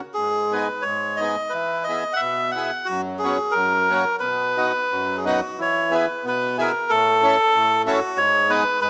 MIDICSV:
0, 0, Header, 1, 3, 480
1, 0, Start_track
1, 0, Tempo, 674157
1, 131, Time_signature, 2, 2, 24, 8
1, 3969, Tempo, 644468
1, 6445, End_track
2, 0, Start_track
2, 0, Title_t, "Melodica"
2, 0, Program_c, 0, 22
2, 99, Note_on_c, 0, 68, 74
2, 373, Note_on_c, 0, 71, 65
2, 377, Note_off_c, 0, 68, 0
2, 582, Note_on_c, 0, 73, 79
2, 595, Note_off_c, 0, 71, 0
2, 831, Note_on_c, 0, 75, 71
2, 859, Note_off_c, 0, 73, 0
2, 1063, Note_on_c, 0, 71, 74
2, 1089, Note_off_c, 0, 75, 0
2, 1309, Note_on_c, 0, 75, 73
2, 1313, Note_off_c, 0, 71, 0
2, 1517, Note_off_c, 0, 75, 0
2, 1517, Note_on_c, 0, 78, 67
2, 1540, Note_on_c, 0, 76, 87
2, 1574, Note_off_c, 0, 78, 0
2, 1790, Note_off_c, 0, 76, 0
2, 1792, Note_on_c, 0, 78, 69
2, 2030, Note_on_c, 0, 66, 78
2, 2046, Note_off_c, 0, 78, 0
2, 2146, Note_off_c, 0, 66, 0
2, 2271, Note_on_c, 0, 68, 67
2, 2500, Note_on_c, 0, 70, 83
2, 2519, Note_off_c, 0, 68, 0
2, 2961, Note_off_c, 0, 70, 0
2, 2987, Note_on_c, 0, 71, 85
2, 3683, Note_on_c, 0, 68, 45
2, 3706, Note_off_c, 0, 71, 0
2, 3740, Note_off_c, 0, 68, 0
2, 3761, Note_on_c, 0, 66, 54
2, 3987, Note_off_c, 0, 66, 0
2, 3999, Note_on_c, 0, 73, 82
2, 4244, Note_on_c, 0, 71, 58
2, 4247, Note_off_c, 0, 73, 0
2, 4477, Note_off_c, 0, 71, 0
2, 4491, Note_on_c, 0, 71, 79
2, 4712, Note_off_c, 0, 71, 0
2, 4740, Note_on_c, 0, 70, 62
2, 4954, Note_on_c, 0, 69, 100
2, 4964, Note_off_c, 0, 70, 0
2, 5643, Note_off_c, 0, 69, 0
2, 5682, Note_on_c, 0, 66, 75
2, 5906, Note_on_c, 0, 73, 101
2, 5909, Note_off_c, 0, 66, 0
2, 6146, Note_on_c, 0, 71, 96
2, 6155, Note_off_c, 0, 73, 0
2, 6371, Note_off_c, 0, 71, 0
2, 6382, Note_on_c, 0, 71, 101
2, 6445, Note_off_c, 0, 71, 0
2, 6445, End_track
3, 0, Start_track
3, 0, Title_t, "Accordion"
3, 0, Program_c, 1, 21
3, 124, Note_on_c, 1, 44, 44
3, 371, Note_on_c, 1, 59, 47
3, 375, Note_on_c, 1, 68, 59
3, 376, Note_on_c, 1, 63, 45
3, 483, Note_off_c, 1, 59, 0
3, 485, Note_off_c, 1, 68, 0
3, 486, Note_off_c, 1, 63, 0
3, 494, Note_off_c, 1, 44, 0
3, 604, Note_on_c, 1, 44, 53
3, 856, Note_on_c, 1, 63, 42
3, 857, Note_on_c, 1, 59, 49
3, 862, Note_on_c, 1, 68, 50
3, 967, Note_off_c, 1, 59, 0
3, 967, Note_off_c, 1, 63, 0
3, 970, Note_off_c, 1, 68, 0
3, 973, Note_off_c, 1, 44, 0
3, 1089, Note_on_c, 1, 52, 54
3, 1340, Note_on_c, 1, 59, 50
3, 1346, Note_on_c, 1, 64, 42
3, 1347, Note_on_c, 1, 68, 53
3, 1449, Note_off_c, 1, 59, 0
3, 1452, Note_off_c, 1, 64, 0
3, 1452, Note_off_c, 1, 68, 0
3, 1456, Note_off_c, 1, 52, 0
3, 1569, Note_on_c, 1, 47, 66
3, 1818, Note_on_c, 1, 59, 56
3, 1818, Note_on_c, 1, 64, 48
3, 1827, Note_on_c, 1, 68, 57
3, 1926, Note_off_c, 1, 59, 0
3, 1927, Note_off_c, 1, 64, 0
3, 1931, Note_off_c, 1, 68, 0
3, 1933, Note_off_c, 1, 47, 0
3, 2058, Note_on_c, 1, 42, 63
3, 2304, Note_on_c, 1, 59, 46
3, 2306, Note_on_c, 1, 61, 48
3, 2314, Note_on_c, 1, 66, 64
3, 2405, Note_off_c, 1, 59, 0
3, 2406, Note_off_c, 1, 61, 0
3, 2410, Note_off_c, 1, 66, 0
3, 2412, Note_off_c, 1, 42, 0
3, 2524, Note_on_c, 1, 42, 67
3, 2777, Note_on_c, 1, 58, 54
3, 2778, Note_on_c, 1, 61, 45
3, 2781, Note_on_c, 1, 66, 63
3, 2879, Note_off_c, 1, 58, 0
3, 2879, Note_off_c, 1, 61, 0
3, 2880, Note_off_c, 1, 66, 0
3, 2882, Note_off_c, 1, 42, 0
3, 2997, Note_on_c, 1, 47, 54
3, 3251, Note_on_c, 1, 59, 59
3, 3256, Note_on_c, 1, 63, 51
3, 3257, Note_on_c, 1, 66, 57
3, 3359, Note_off_c, 1, 59, 0
3, 3362, Note_off_c, 1, 63, 0
3, 3362, Note_off_c, 1, 66, 0
3, 3366, Note_off_c, 1, 47, 0
3, 3491, Note_on_c, 1, 42, 67
3, 3740, Note_on_c, 1, 59, 66
3, 3743, Note_on_c, 1, 63, 64
3, 3748, Note_on_c, 1, 66, 82
3, 3844, Note_off_c, 1, 59, 0
3, 3846, Note_off_c, 1, 63, 0
3, 3848, Note_off_c, 1, 66, 0
3, 3853, Note_off_c, 1, 42, 0
3, 3978, Note_on_c, 1, 52, 55
3, 4219, Note_on_c, 1, 59, 60
3, 4222, Note_on_c, 1, 64, 45
3, 4223, Note_on_c, 1, 68, 67
3, 4328, Note_off_c, 1, 59, 0
3, 4330, Note_off_c, 1, 64, 0
3, 4330, Note_off_c, 1, 68, 0
3, 4343, Note_off_c, 1, 52, 0
3, 4467, Note_on_c, 1, 47, 70
3, 4719, Note_on_c, 1, 64, 49
3, 4720, Note_on_c, 1, 59, 49
3, 4721, Note_on_c, 1, 68, 74
3, 4821, Note_off_c, 1, 59, 0
3, 4821, Note_off_c, 1, 64, 0
3, 4821, Note_off_c, 1, 68, 0
3, 4828, Note_off_c, 1, 47, 0
3, 4960, Note_on_c, 1, 45, 67
3, 5200, Note_on_c, 1, 61, 61
3, 5204, Note_on_c, 1, 64, 63
3, 5206, Note_on_c, 1, 69, 73
3, 5299, Note_off_c, 1, 61, 0
3, 5301, Note_off_c, 1, 64, 0
3, 5302, Note_off_c, 1, 69, 0
3, 5311, Note_off_c, 1, 45, 0
3, 5433, Note_on_c, 1, 45, 74
3, 5674, Note_on_c, 1, 61, 67
3, 5677, Note_on_c, 1, 64, 59
3, 5680, Note_on_c, 1, 69, 75
3, 5773, Note_off_c, 1, 61, 0
3, 5775, Note_off_c, 1, 64, 0
3, 5776, Note_off_c, 1, 69, 0
3, 5785, Note_off_c, 1, 45, 0
3, 5898, Note_on_c, 1, 44, 69
3, 6143, Note_on_c, 1, 59, 55
3, 6150, Note_on_c, 1, 63, 52
3, 6155, Note_on_c, 1, 68, 77
3, 6245, Note_off_c, 1, 59, 0
3, 6249, Note_off_c, 1, 63, 0
3, 6251, Note_off_c, 1, 68, 0
3, 6253, Note_off_c, 1, 44, 0
3, 6384, Note_on_c, 1, 44, 75
3, 6445, Note_off_c, 1, 44, 0
3, 6445, End_track
0, 0, End_of_file